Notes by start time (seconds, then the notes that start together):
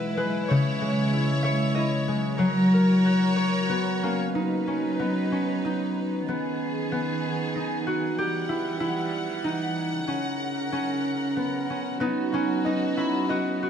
Already playing: E3 G#3 E4 B4 E5 F#5
0.17 G#3 B4
0.48 C#3 G#3 C#5
0.81 G#3
1.13 E4
1.43 C#5 E5
1.75 E4 D#5
2.08 G#3
2.38 F#3 F#4 A#4 C#5
2.74 A#4
3.06 F#4
3.36 C#5
3.69 B3 F#4
4.03 A#3 C#4
4.33 F#3 D#4 B4
4.67 C#4
4.99 B3
5.32 C#4
5.65 D#4
6.28 D#3 B3 G#4
6.92 B3
7.56 D#4
7.87 F#4
8.16 E3 G3 G4 F#5
8.49 E4
8.80 E4
9.44 D#4
10.06 C#3 C#4 A#4
10.72 C#4
11.37 B3
11.70 C#4
12.00 F#3 B3 D#4 F#4
12.32 C#4 F#4
12.65 D#4 D#5
12.97 E4 B5
13.29 F#4 D#5
13.63 F#4